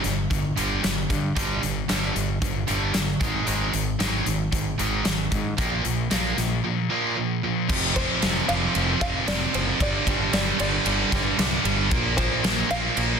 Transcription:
0.04 G1 G2 D3, snare, closed hi-hat
0.31 G1 G2 D3, kick, closed hi-hat
0.57 G1 G2 D3 G3, closed hi-hat
0.84 G1 G2 D3, snare, closed hi-hat
1.10 G2 D3, kick, closed hi-hat
1.37 G1 G2 D3 G3, kick, closed hi-hat
1.63 G1 G2 D3, closed hi-hat
1.89 G1 G2 D3 G3, snare, closed hi-hat
2.16 G1 G2 D3, closed hi-hat
2.42 G1 G2 D3, kick, closed hi-hat
2.68 G1 G2 D3 G3, closed hi-hat
2.94 G1 G2 D3, snare, closed hi-hat
3.20 G#1 G#2 D#3 G#3, kick, closed hi-hat
3.47 G#1 G#2 D#3 G#3, closed hi-hat
3.73 G#1 G#2 D#3, closed hi-hat
3.99 G#1 G#2 D#3 G#3, snare, closed hi-hat
4.26 G#1 G#2 D#3, closed hi-hat
4.52 G#1 G#2 D#3, kick, closed hi-hat
4.79 G#1 G#2 D#3 G#3, closed hi-hat
5.05 G#1 G#2 D#3, snare, closed hi-hat
5.32 G#2 D#3, kick, closed hi-hat
5.58 A#1 A#2 F3 A#3, kick, closed hi-hat
5.85 A#1 A#2 F3, closed hi-hat
6.11 A#1 A#2 F3 A#3, snare, closed hi-hat
6.38 A#1 A#2 F3, snare, closed hi-hat
6.65 A#2 F3
6.90 A#2 F3 A#3
7.17 A#2 F3
7.44 A#2 F3
7.70 F1 F2 C3 F3, kick, crash
7.96 F2 C3 F3 C5, kick, ride
8.22 F1 F2 C3 F3, snare, ride
8.48 F1 F2 C3 F3 F5, ride
8.75 F1 F2 C3 F3, ride
9.01 F1 F2 C3 F3 F5, kick, ride
9.28 F1 F2 C3 F3 D5, snare, ride
9.54 F#1 F2 C3 F3 C5, ride
9.80 G1 G2 D3 G3 D5, kick, ride
10.07 G1 G2 D3 G3, kick, ride
10.33 G1 G2 D3 G3 D5, snare, ride
10.59 G1 G2 D3 G3 D5, ride
10.85 G1 G2 D3 G3, ride
11.12 G1 G2 D3 G3, kick, snare, ride
11.38 C2 G2 D3 G3, snare, ride
11.65 G1 G2 D3 G3, ride
11.91 A#1 A#2 F3 A#3, kick, ride
12.17 A#2 F3 A#3 C5, kick, ride
12.43 A#1 A#2 F3 A#3, snare, ride
12.70 A#1 A#2 F3 A#3 F5, ride
12.96 A#1 A#2 F3 A#3, ride

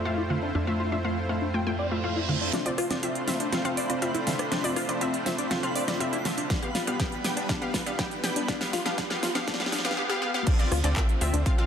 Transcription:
Already playing: F2 A3 C4 E4 F4 C5
0.05 A3 F4 F5
0.18 E4
0.30 D3 A3 F4 F5
0.43 D4
0.55 F2 A3 D4 F4 E5
0.67 A3 F4 E5
0.80 F4
0.92 A3 D4 F4 E5
1.04 A3 F4 F5
1.29 A3 F4 F5
1.42 D4
1.54 A3 F4 G5, reverse cymbal
1.67 A3 F4 G5
1.79 D5
1.91 A3 F4 E5
2.04 A3 F4 F5
2.16 E4
2.29 D3 A3 F4 F5
2.41 D4
2.53 A3 C4 D4 F4 C5 D5 B5, snare, closed hi-hat, riser
2.66 C4 F4 D5, closed hi-hat
2.78 F4, cross-stick, open hi-hat
2.91 C4 D4 F4 D5, snare, closed hi-hat
3.03 C4 F4 E5, closed hi-hat
3.15 closed hi-hat
3.28 C4 F4 E5, snare, open hi-hat
3.40 D4, closed hi-hat
3.52 C4 F4 F5, snare, closed hi-hat
3.65 C4 F4 F5, closed hi-hat
3.77 D5, open hi-hat
3.90 C4 F4 D5, closed hi-hat
4.02 C4 F4 E5, closed hi-hat
4.15 E4, closed hi-hat
4.27 D3 C4 F4 E5, snare, open hi-hat
4.39 D4, cross-stick, closed hi-hat
4.52 C4 D4 F4 D5, snare, closed hi-hat
4.64 C4 F4 D5, open hi-hat
4.76 F4, cross-stick, open hi-hat
4.89 C4 D4 F4 D5, closed hi-hat
5.01 C4 F4 E5, closed hi-hat
5.14 closed hi-hat
5.26 C4 F4 E5, snare, open hi-hat
5.38 D4, closed hi-hat
5.51 C4 F4 F5, snare, closed hi-hat
5.63 C4 F4 F5, closed hi-hat
5.76 D5, open hi-hat
5.88 C4 F4 D5, snare, closed hi-hat
6.00 C4 F4 E5, closed hi-hat
6.13 E4, closed hi-hat
6.25 D3 C4 F4 E5, snare, open hi-hat
6.38 D4, closed hi-hat
6.50 G3 B3 D4 G4 B4 F5, kick, snare, closed hi-hat
6.62 B3 G4 F5, closed hi-hat
6.75 F4, snare, open hi-hat
6.87 B3 D4 G4 F5, closed hi-hat
7.00 B3 G4 G5, kick, snare, closed hi-hat
7.12 closed hi-hat
7.24 B3 G4 G5, snare, open hi-hat
7.37 D4, closed hi-hat
7.49 B3 D4 G4 F5, kick, snare, closed hi-hat
7.62 B3 G4 F5, closed hi-hat
7.74 F4, kick, snare, open hi-hat
7.86 B3 D4 G4 F5, closed hi-hat
7.99 B3 G4 G5, kick, snare, closed hi-hat
8.11 closed hi-hat
8.24 B3 G4 G5, snare, open hi-hat
8.36 D4, closed hi-hat
8.48 B3 D4 G4 F5, kick, snare, closed hi-hat
8.61 B3 G4 F5, snare, open hi-hat
8.73 F4, snare, open hi-hat
8.85 B3 D4 G4 F5, snare, closed hi-hat
8.98 B3 D4 G4 F5, kick, snare, closed hi-hat
9.10 B3 G4 F5, snare, closed hi-hat
9.23 F4, snare, open hi-hat
9.35 B3 D4 G4 F5, snare, closed hi-hat
9.47 B3 D4 G4 F5, kick, snare, closed hi-hat
9.54 snare
9.60 B3 G4 F5, snare, closed hi-hat
9.66 snare
9.72 B3 D4 G4 F5, snare, open hi-hat
9.79 snare
9.85 B3 G4 F5, snare, closed hi-hat
9.91 snare
9.97 B3 G4 F5
10.09 B3 G4 F5
10.22 B3 G4 F5
10.34 B3 G4 F5
10.47 A3 C4 D4 F4 C5 D5 G5, kick, closed hi-hat, crash
10.59 C4 F4 D5, closed hi-hat
10.72 D2 F4, cross-stick, open hi-hat
10.84 D2 C4 D4 F4 D5, closed hi-hat
10.96 C4 F4 E5, kick, clap, closed hi-hat
11.09 closed hi-hat
11.21 D2 C4 F4 E5, open hi-hat
11.34 D2 D4, closed hi-hat
11.46 C4 F4 F5, kick, closed hi-hat
11.58 C4 F4 F5, closed hi-hat

